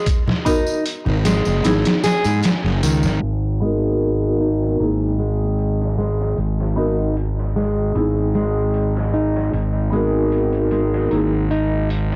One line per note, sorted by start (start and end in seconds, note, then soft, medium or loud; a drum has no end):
0.06 kick loud
0.06 closed hi-hat medium
0.06 tambourine soft
0.28 snare soft
0.28 low conga medium
0.45 0.58 B3 loud
0.45 0.58 D#4 medium
0.45 0.84 D#4 medium
0.45 0.59 F#4 medium
0.45 0.59 A#4 loud
0.45 kick loud
0.45 closed hi-hat medium
0.45 tambourine medium
0.66 tambourine medium
0.85 closed hi-hat medium
0.85 tambourine soft
1.06 1.41 G#1 loud
1.06 low conga medium
1.25 1.64 G#3 medium
1.25 snare loud
1.25 closed hi-hat medium
1.25 tambourine medium
1.45 1.62 F#1 loud
1.45 snare soft
1.45 tambourine soft
1.64 1.83 G#1 medium
1.64 1.84 B3 medium
1.64 1.84 D#4 medium
1.64 1.85 E4 medium
1.64 1.85 G#4 medium
1.64 snare loud
1.64 closed hi-hat medium
1.64 tambourine soft
1.85 snare loud
1.85 closed hi-hat medium
2.04 2.40 G#4 loud
2.04 snare loud
2.04 closed hi-hat medium
2.04 tambourine medium
2.24 2.41 G#2 medium
2.24 closed hi-hat soft
2.24 tambourine medium
2.43 snare loud
2.43 closed hi-hat medium
2.43 tambourine soft
2.64 2.80 F#1 medium
2.64 snare soft
2.83 3.05 C#2 loud
2.83 3.19 D#3 medium
2.83 closed hi-hat medium
2.83 tambourine medium
3.03 3.20 G#1 loud
3.03 snare medium
3.03 tambourine medium
3.22 4.76 G#1 medium
3.22 closed hi-hat medium
3.60 4.37 G#3 medium
3.60 4.77 B3 medium
3.60 4.78 D#4 medium
3.60 4.79 F#4 medium
3.60 closed hi-hat medium
3.66 4.80 A#4 medium
4.01 closed hi-hat medium
4.22 closed hi-hat soft
4.41 4.78 D#4 medium
4.41 closed hi-hat medium
4.63 snare soft
4.79 6.34 G#1 medium
4.79 5.00 A#3 medium
4.79 5.00 D#4 medium
4.79 5.00 E4 medium
4.79 5.01 G#4 medium
4.79 closed hi-hat medium
5.19 5.95 G#3 medium
5.19 closed hi-hat medium
5.59 closed hi-hat medium
5.82 snare soft
5.98 6.38 G#3 medium
5.98 snare soft
5.98 closed hi-hat medium
6.21 snare soft
6.38 7.92 G#1 medium
6.38 closed hi-hat medium
6.60 snare soft
6.76 6.89 B3 medium
6.76 6.90 D#4 medium
6.76 7.15 D#4 medium
6.76 6.90 F#4 medium
6.76 6.91 A#4 medium
6.76 open hi-hat medium
7.17 closed hi-hat medium
7.40 snare soft
7.56 7.96 G#3 medium
7.56 snare soft
7.56 closed hi-hat medium
7.95 9.50 G#1 medium
7.95 8.15 B3 medium
7.95 8.15 D#4 medium
7.95 8.16 E4 medium
7.95 8.16 G#4 medium
7.95 closed hi-hat medium
8.35 9.10 G#3 medium
8.35 snare soft
8.35 closed hi-hat medium
8.74 closed hi-hat medium
8.97 snare soft
9.14 9.52 D#4 medium
9.14 closed hi-hat medium
9.36 snare soft
9.53 11.08 G#1 medium
9.53 closed hi-hat medium
9.90 10.68 G#3 medium
9.90 11.08 B3 medium
9.90 11.09 D#4 medium
9.90 11.10 F#4 medium
9.90 closed hi-hat medium
9.96 11.11 A#4 medium
10.32 closed hi-hat medium
10.53 closed hi-hat soft
10.71 11.12 G#3 medium
10.71 closed hi-hat medium
10.94 snare soft
11.10 12.16 G#1 medium
11.10 11.31 A#3 medium
11.10 11.31 D#4 medium
11.10 11.32 E4 medium
11.10 11.32 G#4 medium
11.10 closed hi-hat medium
11.51 11.89 D#4 medium
11.51 closed hi-hat medium
11.90 closed hi-hat medium
12.12 snare soft